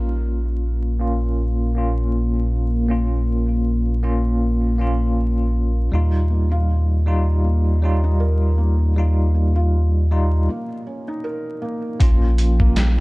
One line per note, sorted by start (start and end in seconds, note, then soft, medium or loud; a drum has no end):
0.00 5.90 A#1 medium
0.00 0.95 A#3 medium
0.00 10.48 A#3 medium
0.00 0.96 C#4 medium
0.00 0.96 F4 medium
0.00 10.48 A#4 medium
1.00 1.71 A#3 medium
1.00 1.72 C#4 medium
1.00 1.72 F4 medium
1.75 2.85 A#3 medium
1.75 2.86 C#4 medium
1.75 2.86 F4 medium
2.89 3.99 A#3 medium
2.89 3.99 C#4 medium
2.89 4.00 F4 medium
4.03 4.75 A#3 medium
4.03 4.75 C#4 medium
4.03 4.76 F4 medium
4.78 5.89 A#3 medium
4.78 5.89 C#4 medium
4.78 5.90 F4 medium
5.92 10.48 D#2 medium
5.92 7.02 G3 medium
5.92 7.03 D#4 medium
5.92 7.04 F4 medium
6.30 6.51 A#3 medium
6.52 7.26 F4 medium
7.06 7.78 G3 medium
7.06 7.79 D#4 medium
7.06 7.79 F4 medium
7.44 7.65 A#3 medium
7.82 8.92 G3 medium
7.82 8.03 C#4 medium
7.82 8.93 D#4 medium
7.82 8.94 F4 medium
8.04 8.20 D#4 medium
8.20 8.57 A#4 medium
8.58 9.33 A#3 medium
8.96 10.06 G3 medium
8.96 10.07 D#4 medium
8.96 10.08 F4 medium
9.34 9.55 A#3 medium
9.56 10.30 F4 medium
10.11 10.49 G3 medium
10.11 10.49 D#4 medium
10.11 10.49 F4 medium
10.49 10.69 A#3 medium
10.87 11.07 C#4 medium
11.08 11.23 D#4 medium
11.24 11.61 A#4 medium
11.62 12.00 A#3 medium
11.99 13.00 A#1 medium
11.99 13.00 F3 medium
11.99 13.00 A#3 medium
11.99 13.00 C#4 medium
11.99 13.00 F4 medium
11.99 13.00 G5 medium
11.99 kick loud
11.99 closed hi-hat medium
12.38 closed hi-hat medium
12.60 13.00 A#3 medium
12.60 kick medium
12.76 snare loud
12.76 closed hi-hat medium